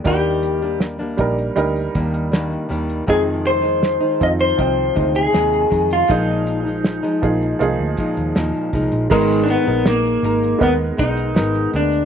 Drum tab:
CC |----------------|----------------|----------------|x---------------|
HH |xxxxx-xxxxxxx-xx|x-xxx-xxx-xxxxxx|x-xxxxxxx-xxx-xx|-xxxxxxxx-xxxxxx|
SD |----o-------o---|----o-------o---|----o-------o---|-o--o-------o---|
BD |o-----o---o-----|o-----o-o-o---o-|o-----o---o---o-|o-------o-o-----|